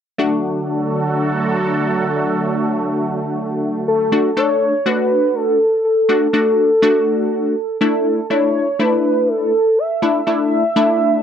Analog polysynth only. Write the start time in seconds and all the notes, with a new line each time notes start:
0.18 A3 D4 F#4
4.12 A3 D4 F#4
4.37 A3 D4 A4
4.86 A3 D4 F#4
6.09 A3 D4 F#4
6.33 A3 D4 F#4
6.82 A3 D4 F#4
7.81 A3 D4 E4
8.30 A3 D4 E4
8.79 A3 D4 E4
10.02 A3 D4 E4
10.27 A3 D4 E4
10.76 A3 D4 E4